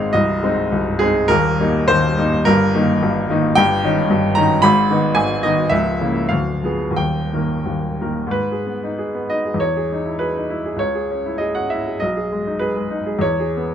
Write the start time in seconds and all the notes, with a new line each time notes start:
Already playing: G#1 G#2 G#3 C4 D#4 D#5 F5
0.13 C1 C2 D#5
0.42 G#3 C4 D#4
0.72 C1 C2
0.99 G#3 C4 D#4 G#4
1.28 D#1 D#2 A#4
1.60 G3 A#3 D#4
1.88 D#1 D#2 C5
2.18 G3 A#3 D#4
2.45 G1 G2 A#4
2.75 D#3 A#3 D#4
3.03 G1 G2
3.30 D#3 A#3 D#4
3.55 G1 G2 G5
3.84 D#3 C#4 D#4
4.10 G1 G2
4.35 D#3 C#4 D#4 A#5
4.62 G#1 G#2 B5
4.91 D#3 B3 D#4
5.15 G#1 G#2 G#5
5.43 D#3 B3 D#4 D#5
5.70 C#1 C#2 E5
6.00 C#3 A#3 E4
6.29 D1 D2 F5
6.64 F3 B3 G#4
6.91 D#2
6.96 D#1 G5
7.33 D#3 A#3 A#4
7.66 D#1 D#2
8.01 D#3 A#3 A#4
8.27 G#2
8.31 B4
8.52 G#4
8.67 B3
8.84 D#4
8.98 G#4
9.15 B3
9.30 D#4 D#5
9.45 G#4
9.54 E2
9.60 C#5
9.77 G#4
9.92 D#4
10.06 E4
10.19 G#4 B4
10.36 D#4
10.50 E4
10.65 G#4
10.76 C#2 C#5
10.95 G#4
11.11 C#4
11.26 E4
11.38 G#4 D#5
11.55 C#4 F#5
11.70 E4 E5
11.87 G#4
12.00 B1 D#5
12.17 G#4
12.32 G#3
12.47 D#4
12.59 G#4 B4
12.76 G#3
12.91 D#4
13.06 G#4
13.19 E2 C#5
13.40 G#4
13.57 B3